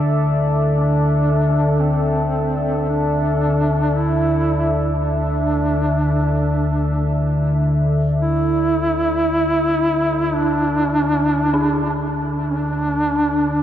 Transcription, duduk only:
0, 0, Header, 1, 2, 480
1, 0, Start_track
1, 0, Tempo, 1071429
1, 1768, Time_signature, 4, 2, 24, 8
1, 6105, End_track
2, 0, Start_track
2, 0, Title_t, "Duduk"
2, 0, Program_c, 0, 69
2, 324, Note_on_c, 0, 62, 79
2, 809, Note_on_c, 0, 60, 73
2, 815, Note_off_c, 0, 62, 0
2, 1288, Note_off_c, 0, 60, 0
2, 1294, Note_on_c, 0, 62, 85
2, 1772, Note_on_c, 0, 64, 104
2, 1779, Note_off_c, 0, 62, 0
2, 2129, Note_off_c, 0, 64, 0
2, 2247, Note_on_c, 0, 62, 78
2, 3189, Note_off_c, 0, 62, 0
2, 3683, Note_on_c, 0, 64, 113
2, 4637, Note_on_c, 0, 62, 88
2, 4644, Note_off_c, 0, 64, 0
2, 5482, Note_off_c, 0, 62, 0
2, 5600, Note_on_c, 0, 62, 90
2, 6105, Note_off_c, 0, 62, 0
2, 6105, End_track
0, 0, End_of_file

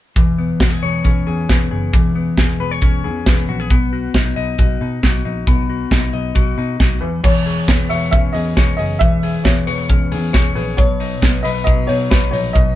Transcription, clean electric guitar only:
0, 0, Header, 1, 2, 480
1, 0, Start_track
1, 0, Tempo, 442804
1, 178, Time_signature, 4, 2, 24, 8
1, 13825, End_track
2, 0, Start_track
2, 0, Title_t, "Clean electric guitar"
2, 0, Program_c, 0, 27
2, 177, Note_on_c, 0, 52, 72
2, 416, Note_on_c, 0, 59, 48
2, 654, Note_on_c, 0, 66, 51
2, 777, Note_off_c, 0, 66, 0
2, 777, Note_on_c, 0, 68, 49
2, 895, Note_on_c, 0, 73, 64
2, 1131, Note_on_c, 0, 61, 59
2, 1362, Note_off_c, 0, 68, 0
2, 1375, Note_on_c, 0, 68, 57
2, 1613, Note_off_c, 0, 59, 0
2, 1617, Note_on_c, 0, 59, 51
2, 1843, Note_off_c, 0, 68, 0
2, 1856, Note_on_c, 0, 68, 47
2, 2080, Note_off_c, 0, 52, 0
2, 2093, Note_on_c, 0, 52, 72
2, 2330, Note_off_c, 0, 59, 0
2, 2335, Note_on_c, 0, 59, 52
2, 2566, Note_off_c, 0, 68, 0
2, 2579, Note_on_c, 0, 68, 49
2, 2815, Note_off_c, 0, 73, 0
2, 2819, Note_on_c, 0, 71, 58
2, 2942, Note_off_c, 0, 71, 0
2, 2942, Note_on_c, 0, 73, 45
2, 3047, Note_off_c, 0, 61, 0
2, 3060, Note_on_c, 0, 61, 68
2, 3285, Note_off_c, 0, 68, 0
2, 3298, Note_on_c, 0, 68, 61
2, 3534, Note_off_c, 0, 59, 0
2, 3538, Note_on_c, 0, 59, 54
2, 3777, Note_off_c, 0, 68, 0
2, 3782, Note_on_c, 0, 66, 52
2, 3900, Note_off_c, 0, 66, 0
2, 3900, Note_on_c, 0, 68, 41
2, 4013, Note_off_c, 0, 61, 0
2, 4015, Note_off_c, 0, 52, 0
2, 4017, Note_off_c, 0, 59, 0
2, 4017, Note_on_c, 0, 59, 72
2, 4067, Note_off_c, 0, 68, 0
2, 4068, Note_off_c, 0, 73, 0
2, 4257, Note_on_c, 0, 66, 55
2, 4492, Note_on_c, 0, 63, 61
2, 4730, Note_on_c, 0, 75, 63
2, 4960, Note_off_c, 0, 66, 0
2, 4973, Note_on_c, 0, 66, 65
2, 5201, Note_off_c, 0, 63, 0
2, 5214, Note_on_c, 0, 63, 55
2, 5439, Note_off_c, 0, 66, 0
2, 5452, Note_on_c, 0, 66, 53
2, 5680, Note_off_c, 0, 63, 0
2, 5693, Note_on_c, 0, 63, 54
2, 5929, Note_off_c, 0, 59, 0
2, 5933, Note_on_c, 0, 59, 76
2, 6161, Note_off_c, 0, 66, 0
2, 6174, Note_on_c, 0, 66, 53
2, 6401, Note_off_c, 0, 63, 0
2, 6414, Note_on_c, 0, 63, 56
2, 6637, Note_off_c, 0, 75, 0
2, 6650, Note_on_c, 0, 75, 57
2, 6871, Note_off_c, 0, 66, 0
2, 6884, Note_on_c, 0, 66, 69
2, 7117, Note_off_c, 0, 63, 0
2, 7130, Note_on_c, 0, 63, 60
2, 7354, Note_off_c, 0, 66, 0
2, 7367, Note_on_c, 0, 66, 51
2, 7605, Note_on_c, 0, 52, 70
2, 7657, Note_off_c, 0, 66, 0
2, 7657, Note_off_c, 0, 75, 0
2, 7658, Note_off_c, 0, 63, 0
2, 7839, Note_off_c, 0, 52, 0
2, 7843, Note_on_c, 0, 52, 73
2, 8087, Note_on_c, 0, 68, 52
2, 8325, Note_off_c, 0, 59, 0
2, 8325, Note_on_c, 0, 59, 56
2, 8564, Note_on_c, 0, 73, 66
2, 8806, Note_on_c, 0, 61, 67
2, 9034, Note_off_c, 0, 68, 0
2, 9047, Note_on_c, 0, 68, 57
2, 9274, Note_off_c, 0, 73, 0
2, 9287, Note_on_c, 0, 73, 59
2, 9514, Note_off_c, 0, 68, 0
2, 9527, Note_on_c, 0, 68, 50
2, 9756, Note_off_c, 0, 52, 0
2, 9769, Note_on_c, 0, 52, 68
2, 9996, Note_off_c, 0, 68, 0
2, 10009, Note_on_c, 0, 68, 50
2, 10240, Note_off_c, 0, 59, 0
2, 10244, Note_on_c, 0, 59, 55
2, 10471, Note_off_c, 0, 73, 0
2, 10484, Note_on_c, 0, 73, 60
2, 10712, Note_off_c, 0, 61, 0
2, 10725, Note_on_c, 0, 61, 62
2, 10954, Note_off_c, 0, 68, 0
2, 10967, Note_on_c, 0, 68, 63
2, 11187, Note_off_c, 0, 73, 0
2, 11200, Note_on_c, 0, 73, 56
2, 11428, Note_off_c, 0, 68, 0
2, 11441, Note_on_c, 0, 68, 56
2, 11679, Note_off_c, 0, 52, 0
2, 11683, Note_on_c, 0, 47, 85
2, 11733, Note_off_c, 0, 68, 0
2, 11733, Note_off_c, 0, 73, 0
2, 11736, Note_off_c, 0, 61, 0
2, 11924, Note_on_c, 0, 63, 52
2, 12156, Note_off_c, 0, 59, 0
2, 12160, Note_on_c, 0, 59, 57
2, 12405, Note_on_c, 0, 71, 65
2, 12643, Note_on_c, 0, 54, 66
2, 12871, Note_off_c, 0, 63, 0
2, 12884, Note_on_c, 0, 63, 52
2, 13108, Note_off_c, 0, 71, 0
2, 13121, Note_on_c, 0, 71, 62
2, 13347, Note_off_c, 0, 63, 0
2, 13360, Note_on_c, 0, 63, 55
2, 13593, Note_off_c, 0, 47, 0
2, 13606, Note_on_c, 0, 47, 76
2, 13825, Note_off_c, 0, 47, 0
2, 13825, Note_off_c, 0, 54, 0
2, 13825, Note_off_c, 0, 59, 0
2, 13825, Note_off_c, 0, 63, 0
2, 13825, Note_off_c, 0, 71, 0
2, 13825, End_track
0, 0, End_of_file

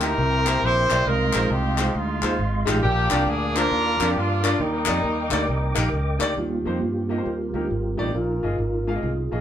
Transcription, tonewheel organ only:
0, 0, Header, 1, 2, 480
1, 0, Start_track
1, 0, Key_signature, -3, "major"
1, 0, Tempo, 442804
1, 1149, Time_signature, 4, 2, 24, 8
1, 10198, End_track
2, 0, Start_track
2, 0, Title_t, "Tonewheel organ"
2, 0, Program_c, 0, 16
2, 0, Note_on_c, 0, 70, 65
2, 0, Note_on_c, 0, 75, 56
2, 0, Note_on_c, 0, 79, 56
2, 0, Note_on_c, 0, 84, 81
2, 185, Note_off_c, 0, 75, 0
2, 187, Note_off_c, 0, 84, 0
2, 197, Note_on_c, 0, 76, 55
2, 200, Note_on_c, 0, 84, 67
2, 1132, Note_off_c, 0, 70, 0
2, 1133, Note_off_c, 0, 79, 0
2, 1133, Note_on_c, 0, 77, 58
2, 1139, Note_on_c, 0, 75, 60
2, 1140, Note_on_c, 0, 56, 64
2, 1142, Note_off_c, 0, 76, 0
2, 3040, Note_off_c, 0, 75, 0
2, 3040, Note_off_c, 0, 84, 0
2, 3041, Note_off_c, 0, 56, 0
2, 3057, Note_on_c, 0, 74, 63
2, 3060, Note_on_c, 0, 70, 68
2, 3061, Note_on_c, 0, 86, 77
2, 4935, Note_off_c, 0, 77, 0
2, 4959, Note_off_c, 0, 74, 0
2, 4960, Note_off_c, 0, 86, 0
2, 4971, Note_on_c, 0, 75, 63
2, 4981, Note_on_c, 0, 79, 64
2, 4983, Note_on_c, 0, 86, 77
2, 6862, Note_off_c, 0, 70, 0
2, 6878, Note_off_c, 0, 75, 0
2, 6883, Note_off_c, 0, 79, 0
2, 6884, Note_off_c, 0, 86, 0
2, 6901, Note_on_c, 0, 55, 48
2, 6914, Note_on_c, 0, 67, 80
2, 6916, Note_on_c, 0, 60, 58
2, 6919, Note_on_c, 0, 58, 58
2, 6919, Note_on_c, 0, 65, 49
2, 7830, Note_off_c, 0, 58, 0
2, 7861, Note_off_c, 0, 67, 0
2, 7862, Note_on_c, 0, 70, 81
2, 7874, Note_on_c, 0, 67, 58
2, 8784, Note_off_c, 0, 70, 0
2, 8785, Note_off_c, 0, 55, 0
2, 8790, Note_off_c, 0, 67, 0
2, 8793, Note_off_c, 0, 60, 0
2, 8794, Note_off_c, 0, 65, 0
2, 8828, Note_on_c, 0, 70, 94
2, 8848, Note_on_c, 0, 63, 63
2, 8849, Note_on_c, 0, 65, 65
2, 9617, Note_off_c, 0, 63, 0
2, 9618, Note_on_c, 0, 56, 47
2, 9624, Note_on_c, 0, 60, 44
2, 9630, Note_on_c, 0, 63, 56
2, 9760, Note_off_c, 0, 65, 0
2, 9788, Note_off_c, 0, 63, 0
2, 9789, Note_on_c, 0, 68, 61
2, 9800, Note_on_c, 0, 65, 50
2, 9801, Note_on_c, 0, 63, 44
2, 9822, Note_off_c, 0, 70, 0
2, 9901, Note_off_c, 0, 56, 0
2, 9904, Note_off_c, 0, 60, 0
2, 10198, Note_off_c, 0, 63, 0
2, 10198, Note_off_c, 0, 65, 0
2, 10198, Note_off_c, 0, 68, 0
2, 10198, End_track
0, 0, End_of_file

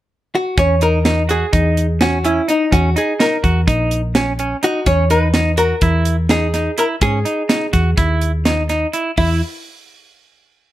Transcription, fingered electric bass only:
0, 0, Header, 1, 2, 480
1, 0, Start_track
1, 0, Tempo, 478469
1, 581, Time_signature, 9, 3, 24, 8
1, 10756, End_track
2, 0, Start_track
2, 0, Title_t, "Fingered electric bass"
2, 0, Program_c, 0, 33
2, 578, Note_on_c, 0, 40, 79
2, 1434, Note_off_c, 0, 40, 0
2, 1537, Note_on_c, 0, 40, 82
2, 2392, Note_off_c, 0, 40, 0
2, 2736, Note_on_c, 0, 40, 93
2, 2949, Note_off_c, 0, 40, 0
2, 3450, Note_on_c, 0, 40, 79
2, 3665, Note_off_c, 0, 40, 0
2, 3691, Note_on_c, 0, 34, 79
2, 4544, Note_off_c, 0, 34, 0
2, 4881, Note_on_c, 0, 40, 92
2, 5738, Note_off_c, 0, 40, 0
2, 5836, Note_on_c, 0, 40, 85
2, 6695, Note_off_c, 0, 40, 0
2, 7041, Note_on_c, 0, 44, 93
2, 7257, Note_off_c, 0, 44, 0
2, 7763, Note_on_c, 0, 40, 75
2, 7979, Note_off_c, 0, 40, 0
2, 8004, Note_on_c, 0, 39, 72
2, 8865, Note_off_c, 0, 39, 0
2, 9208, Note_on_c, 0, 40, 80
2, 9434, Note_off_c, 0, 40, 0
2, 10756, End_track
0, 0, End_of_file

